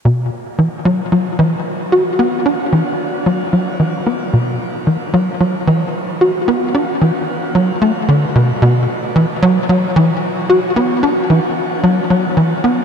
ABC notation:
X:1
M:4/4
L:1/8
Q:1/4=112
K:Bm
V:1 name="Analog synth bass" clef=bass
B,, z E, F, F, E, z F | B, D E, z F, F, E, B, | B,, z E, F, F, E, z F | B, D E, z F, A, D, B,, |
B,, z E, F, F, E, z F | B, D E, z F, F, E, B, |]